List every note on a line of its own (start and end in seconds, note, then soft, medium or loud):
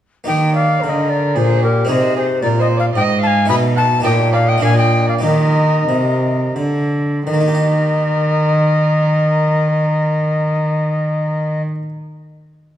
0.24 0.79 A#3 medium
0.24 1.84 D#4 medium
0.24 1.85 G4 soft
0.24 0.53 D#5 medium
0.24 0.53 G5 medium
0.29 0.79 D#3 medium
0.55 0.83 D5 medium
0.55 0.85 F5 medium
0.82 1.38 D3 medium
0.82 1.33 D3 medium
0.82 1.08 A#4 medium
0.82 0.90 F5 medium
0.89 1.11 D#5 medium
1.09 1.36 A#4 medium
1.09 1.39 D5 medium
1.35 1.85 A#2 medium
1.35 1.89 A#2 medium
1.35 1.64 G#4 medium
1.35 1.63 C5 medium
1.62 1.91 G4 medium
1.62 1.89 A#4 medium
1.85 3.43 C4 medium
1.85 3.44 D#4 medium
1.85 3.45 G#4 medium
1.89 2.44 C3 medium
1.89 2.39 C3 medium
1.89 2.16 C5 medium
1.89 2.16 D#5 medium
2.16 2.24 G#4 medium
2.16 2.41 C5 medium
2.42 2.96 A#2 medium
2.42 2.92 A#2 medium
2.42 2.61 A#4 medium
2.42 2.48 D5 medium
2.60 2.78 C5 medium
2.60 2.67 D#5 medium
2.77 2.95 D5 medium
2.77 2.86 F5 medium
2.95 3.45 G#2 medium
2.95 3.49 G#2 medium
2.95 3.21 D#5 loud
2.95 3.03 G5 loud
3.21 3.48 F5 medium
3.21 3.28 A5 loud
3.27 3.49 G#5 loud
3.46 4.01 B2 medium
3.46 4.01 A3 medium
3.46 4.01 D#4 medium
3.46 4.02 A4 medium
3.46 3.57 D#5 loud
3.46 3.55 B5 loud
3.50 4.04 B2 medium
3.76 3.84 F#5 medium
3.76 4.04 A5 loud
4.00 4.57 A#3 medium
4.00 4.59 D#4 medium
4.00 4.60 G4 medium
4.04 4.58 A#2 medium
4.04 4.61 A#2 medium
4.04 4.13 D#5 medium
4.04 4.32 G5 loud
4.33 4.39 D5 medium
4.33 4.50 F5 loud
4.47 4.64 D#5 medium
4.47 4.63 G5 loud
4.58 5.17 A#3 medium
4.58 5.20 D4 medium
4.58 5.21 F4 medium
4.62 5.22 A#2 medium
4.62 5.20 A#2 medium
4.62 4.76 F5 medium
4.62 4.78 G#5 loud
4.77 5.09 D#5 medium
4.77 5.08 G5 loud
5.08 5.22 D5 medium
5.08 5.15 F5 medium
5.19 5.84 A#3 medium
5.19 7.21 D#4 medium
5.19 7.22 G4 medium
5.23 5.87 D#3 medium
5.23 5.84 D#3 medium
5.23 6.52 A#4 loud
5.23 6.53 D#5 medium
5.88 6.54 C3 medium
5.88 6.52 C3 medium
6.55 7.25 D3 medium
6.55 7.23 D3 medium
7.26 11.61 D#3 medium
7.26 11.61 A#4 medium
7.26 11.62 D#5 medium
7.34 11.68 A#3 medium
7.41 11.75 D#4 medium
7.48 11.82 G4 medium
7.55 11.89 D#5 medium